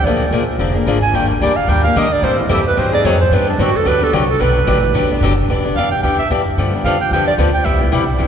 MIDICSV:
0, 0, Header, 1, 5, 480
1, 0, Start_track
1, 0, Key_signature, 1, "major"
1, 0, Tempo, 271616
1, 92, Time_signature, 4, 2, 24, 8
1, 14622, End_track
2, 0, Start_track
2, 0, Title_t, "Clarinet"
2, 0, Program_c, 0, 71
2, 82, Note_on_c, 0, 74, 79
2, 568, Note_off_c, 0, 74, 0
2, 1813, Note_on_c, 0, 80, 93
2, 2030, Note_on_c, 0, 79, 89
2, 2056, Note_off_c, 0, 80, 0
2, 2269, Note_off_c, 0, 79, 0
2, 2280, Note_on_c, 0, 70, 54
2, 2494, Note_on_c, 0, 74, 88
2, 2521, Note_off_c, 0, 70, 0
2, 2761, Note_on_c, 0, 77, 86
2, 2787, Note_off_c, 0, 74, 0
2, 2984, Note_on_c, 0, 79, 94
2, 3011, Note_off_c, 0, 77, 0
2, 3233, Note_off_c, 0, 79, 0
2, 3244, Note_on_c, 0, 77, 92
2, 3504, Note_on_c, 0, 75, 88
2, 3530, Note_off_c, 0, 77, 0
2, 3752, Note_on_c, 0, 74, 96
2, 3779, Note_off_c, 0, 75, 0
2, 3958, Note_on_c, 0, 72, 84
2, 3985, Note_off_c, 0, 74, 0
2, 4211, Note_off_c, 0, 72, 0
2, 4222, Note_on_c, 0, 64, 48
2, 4417, Note_on_c, 0, 67, 83
2, 4443, Note_off_c, 0, 64, 0
2, 4693, Note_off_c, 0, 67, 0
2, 4722, Note_on_c, 0, 71, 85
2, 4925, Note_on_c, 0, 72, 78
2, 4951, Note_off_c, 0, 71, 0
2, 5187, Note_off_c, 0, 72, 0
2, 5195, Note_on_c, 0, 74, 100
2, 5399, Note_on_c, 0, 73, 77
2, 5426, Note_off_c, 0, 74, 0
2, 5654, Note_off_c, 0, 73, 0
2, 5665, Note_on_c, 0, 72, 88
2, 5895, Note_on_c, 0, 71, 86
2, 5922, Note_off_c, 0, 72, 0
2, 6144, Note_off_c, 0, 71, 0
2, 6154, Note_on_c, 0, 62, 77
2, 6376, Note_on_c, 0, 66, 93
2, 6403, Note_off_c, 0, 62, 0
2, 6648, Note_on_c, 0, 69, 93
2, 6675, Note_off_c, 0, 66, 0
2, 6849, Note_on_c, 0, 71, 96
2, 6875, Note_off_c, 0, 69, 0
2, 7133, Note_on_c, 0, 69, 91
2, 7160, Note_off_c, 0, 71, 0
2, 7317, Note_on_c, 0, 66, 70
2, 7344, Note_off_c, 0, 69, 0
2, 7583, Note_off_c, 0, 66, 0
2, 7595, Note_on_c, 0, 69, 91
2, 7787, Note_on_c, 0, 71, 90
2, 7814, Note_off_c, 0, 69, 0
2, 9221, Note_off_c, 0, 71, 0
2, 10169, Note_on_c, 0, 77, 85
2, 10428, Note_off_c, 0, 77, 0
2, 10444, Note_on_c, 0, 79, 86
2, 10636, Note_off_c, 0, 79, 0
2, 10647, Note_on_c, 0, 79, 80
2, 10906, Note_off_c, 0, 79, 0
2, 10937, Note_on_c, 0, 76, 87
2, 11123, Note_off_c, 0, 76, 0
2, 12099, Note_on_c, 0, 77, 88
2, 12352, Note_off_c, 0, 77, 0
2, 12384, Note_on_c, 0, 79, 88
2, 12566, Note_off_c, 0, 79, 0
2, 12597, Note_on_c, 0, 79, 91
2, 12841, Note_off_c, 0, 79, 0
2, 12854, Note_on_c, 0, 74, 96
2, 12974, Note_off_c, 0, 74, 0
2, 13326, Note_on_c, 0, 79, 84
2, 13511, Note_on_c, 0, 76, 75
2, 13537, Note_off_c, 0, 79, 0
2, 13796, Note_off_c, 0, 76, 0
2, 14622, End_track
3, 0, Start_track
3, 0, Title_t, "Steel-string acoustic guitar"
3, 0, Program_c, 1, 25
3, 104, Note_on_c, 1, 50, 62
3, 113, Note_on_c, 1, 53, 66
3, 115, Note_on_c, 1, 58, 64
3, 121, Note_on_c, 1, 62, 68
3, 121, Note_on_c, 1, 68, 64
3, 424, Note_off_c, 1, 50, 0
3, 429, Note_off_c, 1, 53, 0
3, 430, Note_off_c, 1, 58, 0
3, 432, Note_off_c, 1, 62, 0
3, 432, Note_off_c, 1, 68, 0
3, 574, Note_on_c, 1, 50, 80
3, 574, Note_on_c, 1, 53, 77
3, 578, Note_on_c, 1, 58, 87
3, 583, Note_on_c, 1, 68, 89
3, 586, Note_on_c, 1, 62, 83
3, 755, Note_off_c, 1, 50, 0
3, 755, Note_off_c, 1, 53, 0
3, 757, Note_off_c, 1, 58, 0
3, 760, Note_off_c, 1, 68, 0
3, 761, Note_off_c, 1, 62, 0
3, 1042, Note_on_c, 1, 50, 61
3, 1055, Note_on_c, 1, 53, 61
3, 1055, Note_on_c, 1, 58, 64
3, 1062, Note_on_c, 1, 62, 69
3, 1070, Note_on_c, 1, 68, 65
3, 1286, Note_off_c, 1, 68, 0
3, 1307, Note_on_c, 1, 68, 53
3, 1312, Note_off_c, 1, 62, 0
3, 1314, Note_off_c, 1, 50, 0
3, 1320, Note_off_c, 1, 53, 0
3, 1320, Note_off_c, 1, 58, 0
3, 1334, Note_on_c, 1, 62, 51
3, 1351, Note_on_c, 1, 58, 41
3, 1515, Note_off_c, 1, 68, 0
3, 1529, Note_off_c, 1, 62, 0
3, 1532, Note_off_c, 1, 58, 0
3, 1535, Note_on_c, 1, 50, 81
3, 1545, Note_on_c, 1, 53, 87
3, 1549, Note_on_c, 1, 62, 93
3, 1553, Note_on_c, 1, 58, 90
3, 1555, Note_on_c, 1, 68, 83
3, 1716, Note_off_c, 1, 50, 0
3, 1722, Note_off_c, 1, 53, 0
3, 1724, Note_off_c, 1, 62, 0
3, 1725, Note_off_c, 1, 58, 0
3, 1727, Note_off_c, 1, 68, 0
3, 2007, Note_on_c, 1, 51, 62
3, 2022, Note_on_c, 1, 55, 55
3, 2028, Note_on_c, 1, 58, 62
3, 2028, Note_on_c, 1, 62, 59
3, 2038, Note_on_c, 1, 67, 68
3, 2337, Note_off_c, 1, 51, 0
3, 2345, Note_off_c, 1, 55, 0
3, 2347, Note_off_c, 1, 58, 0
3, 2347, Note_off_c, 1, 62, 0
3, 2352, Note_off_c, 1, 67, 0
3, 2500, Note_on_c, 1, 51, 76
3, 2511, Note_on_c, 1, 55, 81
3, 2521, Note_on_c, 1, 58, 80
3, 2532, Note_on_c, 1, 62, 89
3, 2534, Note_on_c, 1, 67, 86
3, 2680, Note_off_c, 1, 51, 0
3, 2685, Note_off_c, 1, 55, 0
3, 2691, Note_off_c, 1, 58, 0
3, 2696, Note_off_c, 1, 62, 0
3, 2697, Note_off_c, 1, 67, 0
3, 2963, Note_on_c, 1, 51, 69
3, 2981, Note_on_c, 1, 55, 73
3, 2987, Note_on_c, 1, 58, 69
3, 2989, Note_on_c, 1, 62, 76
3, 2992, Note_on_c, 1, 67, 68
3, 3235, Note_off_c, 1, 51, 0
3, 3239, Note_off_c, 1, 67, 0
3, 3244, Note_off_c, 1, 55, 0
3, 3247, Note_off_c, 1, 58, 0
3, 3248, Note_off_c, 1, 62, 0
3, 3260, Note_on_c, 1, 67, 54
3, 3278, Note_on_c, 1, 62, 49
3, 3295, Note_on_c, 1, 58, 47
3, 3453, Note_off_c, 1, 58, 0
3, 3453, Note_off_c, 1, 67, 0
3, 3462, Note_off_c, 1, 62, 0
3, 3462, Note_on_c, 1, 51, 86
3, 3474, Note_on_c, 1, 58, 94
3, 3475, Note_on_c, 1, 55, 84
3, 3482, Note_on_c, 1, 67, 86
3, 3486, Note_on_c, 1, 62, 83
3, 3641, Note_off_c, 1, 51, 0
3, 3647, Note_off_c, 1, 58, 0
3, 3648, Note_off_c, 1, 55, 0
3, 3651, Note_off_c, 1, 67, 0
3, 3653, Note_off_c, 1, 62, 0
3, 3948, Note_on_c, 1, 55, 60
3, 3950, Note_on_c, 1, 52, 61
3, 3962, Note_on_c, 1, 60, 65
3, 3966, Note_on_c, 1, 69, 69
3, 3973, Note_on_c, 1, 64, 65
3, 4268, Note_off_c, 1, 55, 0
3, 4269, Note_off_c, 1, 52, 0
3, 4275, Note_off_c, 1, 60, 0
3, 4278, Note_off_c, 1, 69, 0
3, 4281, Note_off_c, 1, 64, 0
3, 4403, Note_on_c, 1, 60, 86
3, 4406, Note_on_c, 1, 52, 89
3, 4407, Note_on_c, 1, 55, 85
3, 4407, Note_on_c, 1, 64, 85
3, 4416, Note_on_c, 1, 69, 86
3, 4592, Note_off_c, 1, 60, 0
3, 4593, Note_off_c, 1, 52, 0
3, 4594, Note_off_c, 1, 55, 0
3, 4594, Note_off_c, 1, 64, 0
3, 4599, Note_off_c, 1, 69, 0
3, 4896, Note_on_c, 1, 54, 69
3, 4897, Note_on_c, 1, 51, 67
3, 4897, Note_on_c, 1, 60, 67
3, 4906, Note_on_c, 1, 63, 74
3, 4919, Note_on_c, 1, 68, 74
3, 5139, Note_off_c, 1, 68, 0
3, 5154, Note_off_c, 1, 63, 0
3, 5160, Note_on_c, 1, 68, 60
3, 5162, Note_off_c, 1, 54, 0
3, 5163, Note_off_c, 1, 51, 0
3, 5163, Note_off_c, 1, 60, 0
3, 5175, Note_on_c, 1, 63, 50
3, 5198, Note_on_c, 1, 60, 49
3, 5363, Note_off_c, 1, 68, 0
3, 5371, Note_off_c, 1, 63, 0
3, 5383, Note_off_c, 1, 60, 0
3, 5387, Note_on_c, 1, 51, 85
3, 5391, Note_on_c, 1, 54, 96
3, 5404, Note_on_c, 1, 60, 83
3, 5410, Note_on_c, 1, 68, 87
3, 5411, Note_on_c, 1, 63, 92
3, 5564, Note_off_c, 1, 51, 0
3, 5566, Note_off_c, 1, 54, 0
3, 5572, Note_off_c, 1, 60, 0
3, 5575, Note_off_c, 1, 68, 0
3, 5576, Note_off_c, 1, 63, 0
3, 5866, Note_on_c, 1, 50, 59
3, 5873, Note_on_c, 1, 54, 62
3, 5876, Note_on_c, 1, 59, 62
3, 5882, Note_on_c, 1, 62, 70
3, 5888, Note_on_c, 1, 67, 77
3, 6187, Note_off_c, 1, 50, 0
3, 6191, Note_off_c, 1, 54, 0
3, 6192, Note_off_c, 1, 59, 0
3, 6195, Note_off_c, 1, 62, 0
3, 6198, Note_off_c, 1, 67, 0
3, 6346, Note_on_c, 1, 50, 83
3, 6352, Note_on_c, 1, 59, 90
3, 6360, Note_on_c, 1, 54, 89
3, 6365, Note_on_c, 1, 62, 84
3, 6380, Note_on_c, 1, 67, 102
3, 6523, Note_off_c, 1, 50, 0
3, 6526, Note_off_c, 1, 59, 0
3, 6530, Note_off_c, 1, 54, 0
3, 6533, Note_off_c, 1, 62, 0
3, 6540, Note_off_c, 1, 67, 0
3, 6809, Note_on_c, 1, 50, 67
3, 6822, Note_on_c, 1, 54, 74
3, 6827, Note_on_c, 1, 59, 64
3, 6835, Note_on_c, 1, 62, 76
3, 6844, Note_on_c, 1, 67, 67
3, 7052, Note_off_c, 1, 67, 0
3, 7070, Note_off_c, 1, 62, 0
3, 7073, Note_on_c, 1, 67, 66
3, 7078, Note_off_c, 1, 50, 0
3, 7085, Note_off_c, 1, 54, 0
3, 7087, Note_off_c, 1, 59, 0
3, 7091, Note_on_c, 1, 62, 55
3, 7108, Note_on_c, 1, 59, 50
3, 7279, Note_off_c, 1, 67, 0
3, 7281, Note_off_c, 1, 59, 0
3, 7288, Note_off_c, 1, 62, 0
3, 7302, Note_on_c, 1, 50, 89
3, 7302, Note_on_c, 1, 59, 89
3, 7306, Note_on_c, 1, 54, 90
3, 7310, Note_on_c, 1, 62, 90
3, 7315, Note_on_c, 1, 67, 98
3, 7481, Note_off_c, 1, 50, 0
3, 7481, Note_off_c, 1, 59, 0
3, 7483, Note_off_c, 1, 54, 0
3, 7485, Note_off_c, 1, 62, 0
3, 7488, Note_off_c, 1, 67, 0
3, 7766, Note_on_c, 1, 54, 72
3, 7767, Note_on_c, 1, 50, 67
3, 7777, Note_on_c, 1, 62, 71
3, 7784, Note_on_c, 1, 59, 64
3, 7786, Note_on_c, 1, 67, 66
3, 8096, Note_off_c, 1, 54, 0
3, 8097, Note_off_c, 1, 50, 0
3, 8102, Note_off_c, 1, 62, 0
3, 8105, Note_off_c, 1, 59, 0
3, 8106, Note_off_c, 1, 67, 0
3, 8253, Note_on_c, 1, 50, 93
3, 8264, Note_on_c, 1, 54, 90
3, 8267, Note_on_c, 1, 62, 93
3, 8268, Note_on_c, 1, 59, 91
3, 8273, Note_on_c, 1, 67, 88
3, 8436, Note_off_c, 1, 50, 0
3, 8442, Note_off_c, 1, 54, 0
3, 8443, Note_off_c, 1, 62, 0
3, 8444, Note_off_c, 1, 59, 0
3, 8446, Note_off_c, 1, 67, 0
3, 8732, Note_on_c, 1, 50, 66
3, 8743, Note_on_c, 1, 59, 72
3, 8744, Note_on_c, 1, 54, 70
3, 8748, Note_on_c, 1, 62, 81
3, 8752, Note_on_c, 1, 67, 73
3, 8998, Note_off_c, 1, 50, 0
3, 9001, Note_off_c, 1, 67, 0
3, 9004, Note_off_c, 1, 54, 0
3, 9004, Note_off_c, 1, 59, 0
3, 9006, Note_off_c, 1, 62, 0
3, 9023, Note_on_c, 1, 67, 62
3, 9049, Note_on_c, 1, 62, 56
3, 9060, Note_on_c, 1, 59, 47
3, 9213, Note_off_c, 1, 67, 0
3, 9226, Note_off_c, 1, 62, 0
3, 9232, Note_off_c, 1, 59, 0
3, 9236, Note_on_c, 1, 50, 86
3, 9242, Note_on_c, 1, 54, 89
3, 9251, Note_on_c, 1, 59, 95
3, 9254, Note_on_c, 1, 62, 92
3, 9263, Note_on_c, 1, 67, 90
3, 9407, Note_off_c, 1, 50, 0
3, 9410, Note_off_c, 1, 54, 0
3, 9414, Note_off_c, 1, 59, 0
3, 9416, Note_off_c, 1, 62, 0
3, 9420, Note_off_c, 1, 67, 0
3, 9717, Note_on_c, 1, 52, 60
3, 9718, Note_on_c, 1, 59, 69
3, 9726, Note_on_c, 1, 62, 70
3, 9737, Note_on_c, 1, 67, 64
3, 9945, Note_off_c, 1, 67, 0
3, 9966, Note_off_c, 1, 62, 0
3, 9966, Note_on_c, 1, 67, 62
3, 9971, Note_off_c, 1, 52, 0
3, 9971, Note_off_c, 1, 59, 0
3, 9988, Note_on_c, 1, 62, 52
3, 10004, Note_on_c, 1, 59, 46
3, 10164, Note_off_c, 1, 67, 0
3, 10175, Note_off_c, 1, 62, 0
3, 10183, Note_off_c, 1, 59, 0
3, 10210, Note_on_c, 1, 52, 74
3, 10215, Note_on_c, 1, 59, 83
3, 10221, Note_on_c, 1, 67, 89
3, 10226, Note_on_c, 1, 62, 91
3, 10373, Note_off_c, 1, 52, 0
3, 10376, Note_off_c, 1, 59, 0
3, 10379, Note_off_c, 1, 67, 0
3, 10381, Note_off_c, 1, 62, 0
3, 10660, Note_on_c, 1, 52, 61
3, 10676, Note_on_c, 1, 62, 63
3, 10679, Note_on_c, 1, 59, 64
3, 10681, Note_on_c, 1, 67, 71
3, 10982, Note_off_c, 1, 52, 0
3, 10990, Note_off_c, 1, 62, 0
3, 10991, Note_off_c, 1, 59, 0
3, 10992, Note_off_c, 1, 67, 0
3, 11138, Note_on_c, 1, 52, 74
3, 11152, Note_on_c, 1, 59, 83
3, 11154, Note_on_c, 1, 62, 94
3, 11155, Note_on_c, 1, 67, 90
3, 11317, Note_off_c, 1, 52, 0
3, 11324, Note_off_c, 1, 59, 0
3, 11324, Note_off_c, 1, 62, 0
3, 11325, Note_off_c, 1, 67, 0
3, 11629, Note_on_c, 1, 53, 66
3, 11635, Note_on_c, 1, 50, 60
3, 11643, Note_on_c, 1, 59, 72
3, 11648, Note_on_c, 1, 67, 68
3, 11649, Note_on_c, 1, 62, 63
3, 11883, Note_off_c, 1, 67, 0
3, 11885, Note_off_c, 1, 53, 0
3, 11888, Note_off_c, 1, 50, 0
3, 11892, Note_off_c, 1, 59, 0
3, 11895, Note_off_c, 1, 62, 0
3, 11904, Note_on_c, 1, 67, 58
3, 11934, Note_on_c, 1, 62, 54
3, 11939, Note_on_c, 1, 59, 46
3, 12092, Note_off_c, 1, 67, 0
3, 12096, Note_off_c, 1, 59, 0
3, 12107, Note_off_c, 1, 62, 0
3, 12112, Note_on_c, 1, 50, 82
3, 12117, Note_on_c, 1, 59, 86
3, 12122, Note_on_c, 1, 53, 84
3, 12129, Note_on_c, 1, 62, 83
3, 12140, Note_on_c, 1, 67, 90
3, 12283, Note_off_c, 1, 50, 0
3, 12286, Note_off_c, 1, 59, 0
3, 12288, Note_off_c, 1, 53, 0
3, 12292, Note_off_c, 1, 62, 0
3, 12297, Note_off_c, 1, 67, 0
3, 12603, Note_on_c, 1, 50, 65
3, 12614, Note_on_c, 1, 67, 72
3, 12618, Note_on_c, 1, 53, 61
3, 12623, Note_on_c, 1, 59, 70
3, 12627, Note_on_c, 1, 62, 62
3, 12912, Note_off_c, 1, 50, 0
3, 12917, Note_off_c, 1, 67, 0
3, 12919, Note_off_c, 1, 53, 0
3, 12922, Note_off_c, 1, 59, 0
3, 12924, Note_off_c, 1, 62, 0
3, 13047, Note_on_c, 1, 50, 86
3, 13055, Note_on_c, 1, 53, 94
3, 13057, Note_on_c, 1, 59, 86
3, 13068, Note_on_c, 1, 62, 89
3, 13071, Note_on_c, 1, 67, 90
3, 13230, Note_off_c, 1, 50, 0
3, 13234, Note_off_c, 1, 53, 0
3, 13235, Note_off_c, 1, 59, 0
3, 13240, Note_off_c, 1, 62, 0
3, 13242, Note_off_c, 1, 67, 0
3, 13504, Note_on_c, 1, 48, 60
3, 13526, Note_on_c, 1, 55, 59
3, 13529, Note_on_c, 1, 59, 68
3, 13535, Note_on_c, 1, 67, 71
3, 13536, Note_on_c, 1, 64, 66
3, 13767, Note_off_c, 1, 67, 0
3, 13773, Note_off_c, 1, 64, 0
3, 13782, Note_off_c, 1, 48, 0
3, 13788, Note_on_c, 1, 67, 59
3, 13793, Note_off_c, 1, 55, 0
3, 13794, Note_off_c, 1, 59, 0
3, 13795, Note_on_c, 1, 64, 51
3, 13819, Note_on_c, 1, 59, 51
3, 13985, Note_on_c, 1, 48, 80
3, 13988, Note_off_c, 1, 64, 0
3, 13988, Note_off_c, 1, 67, 0
3, 13993, Note_off_c, 1, 59, 0
3, 13998, Note_on_c, 1, 55, 85
3, 14009, Note_on_c, 1, 64, 89
3, 14010, Note_on_c, 1, 67, 88
3, 14014, Note_on_c, 1, 59, 82
3, 14179, Note_off_c, 1, 48, 0
3, 14185, Note_off_c, 1, 55, 0
3, 14191, Note_off_c, 1, 64, 0
3, 14191, Note_off_c, 1, 67, 0
3, 14193, Note_off_c, 1, 59, 0
3, 14463, Note_on_c, 1, 48, 67
3, 14466, Note_on_c, 1, 55, 61
3, 14473, Note_on_c, 1, 59, 77
3, 14479, Note_on_c, 1, 67, 70
3, 14481, Note_on_c, 1, 64, 68
3, 14622, Note_off_c, 1, 48, 0
3, 14622, Note_off_c, 1, 55, 0
3, 14622, Note_off_c, 1, 59, 0
3, 14622, Note_off_c, 1, 64, 0
3, 14622, Note_off_c, 1, 67, 0
3, 14622, End_track
4, 0, Start_track
4, 0, Title_t, "Upright bass"
4, 0, Program_c, 2, 32
4, 63, Note_on_c, 2, 34, 77
4, 532, Note_off_c, 2, 34, 0
4, 543, Note_on_c, 2, 34, 85
4, 1024, Note_off_c, 2, 34, 0
4, 1032, Note_on_c, 2, 29, 75
4, 1509, Note_off_c, 2, 29, 0
4, 1518, Note_on_c, 2, 32, 85
4, 1988, Note_off_c, 2, 32, 0
4, 1998, Note_on_c, 2, 31, 74
4, 2473, Note_off_c, 2, 31, 0
4, 2497, Note_on_c, 2, 38, 86
4, 2753, Note_off_c, 2, 38, 0
4, 2960, Note_on_c, 2, 39, 79
4, 3435, Note_off_c, 2, 39, 0
4, 3465, Note_on_c, 2, 38, 85
4, 3917, Note_off_c, 2, 38, 0
4, 3928, Note_on_c, 2, 45, 80
4, 4399, Note_off_c, 2, 45, 0
4, 4414, Note_on_c, 2, 42, 96
4, 4882, Note_off_c, 2, 42, 0
4, 4905, Note_on_c, 2, 44, 80
4, 5367, Note_off_c, 2, 44, 0
4, 5384, Note_on_c, 2, 41, 95
4, 5841, Note_off_c, 2, 41, 0
4, 5851, Note_on_c, 2, 43, 80
4, 6320, Note_off_c, 2, 43, 0
4, 6333, Note_on_c, 2, 42, 97
4, 6592, Note_off_c, 2, 42, 0
4, 6808, Note_on_c, 2, 38, 83
4, 7278, Note_off_c, 2, 38, 0
4, 7300, Note_on_c, 2, 36, 93
4, 7764, Note_off_c, 2, 36, 0
4, 7780, Note_on_c, 2, 35, 87
4, 8240, Note_off_c, 2, 35, 0
4, 8250, Note_on_c, 2, 33, 96
4, 8718, Note_off_c, 2, 33, 0
4, 8731, Note_on_c, 2, 31, 87
4, 8990, Note_off_c, 2, 31, 0
4, 9201, Note_on_c, 2, 30, 98
4, 9673, Note_off_c, 2, 30, 0
4, 9685, Note_on_c, 2, 28, 75
4, 10155, Note_off_c, 2, 28, 0
4, 10171, Note_on_c, 2, 40, 89
4, 10637, Note_off_c, 2, 40, 0
4, 10658, Note_on_c, 2, 38, 77
4, 10912, Note_off_c, 2, 38, 0
4, 11138, Note_on_c, 2, 42, 86
4, 11601, Note_off_c, 2, 42, 0
4, 11616, Note_on_c, 2, 43, 77
4, 12079, Note_off_c, 2, 43, 0
4, 12094, Note_on_c, 2, 41, 92
4, 12555, Note_off_c, 2, 41, 0
4, 12565, Note_on_c, 2, 40, 84
4, 13033, Note_off_c, 2, 40, 0
4, 13043, Note_on_c, 2, 38, 84
4, 13512, Note_off_c, 2, 38, 0
4, 13527, Note_on_c, 2, 36, 80
4, 13994, Note_off_c, 2, 36, 0
4, 14002, Note_on_c, 2, 35, 87
4, 14471, Note_off_c, 2, 35, 0
4, 14489, Note_on_c, 2, 31, 88
4, 14622, Note_off_c, 2, 31, 0
4, 14622, End_track
5, 0, Start_track
5, 0, Title_t, "Muted upright bass strokes"
5, 2770, Note_on_c, 9, 29, 37
5, 2946, Note_off_c, 9, 29, 0
5, 6617, Note_on_c, 9, 29, 39
5, 6794, Note_off_c, 9, 29, 0
5, 9000, Note_on_c, 9, 29, 38
5, 9176, Note_off_c, 9, 29, 0
5, 10922, Note_on_c, 9, 29, 37
5, 11099, Note_off_c, 9, 29, 0
5, 14622, End_track
0, 0, End_of_file